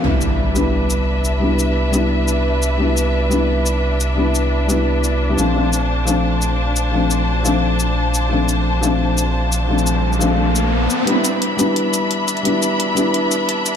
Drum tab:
HH |----------------|----------------|----------------|----------------|
SH |--x---x---x---x-|--x---x---x---x-|--x---x---x---x-|--x---x---x---x-|

HH |----------------|----------------|----------------|----------------|
SH |--x---x---x---x-|--x---x---x---x-|--x---x---x---x-|-xx--xx---x---x-|

HH |x-x-x-x-x-x-x-xx|x-x-x-x-x-x-x-x-|
SH |--x---x---x---x-|--x---x---x---x-|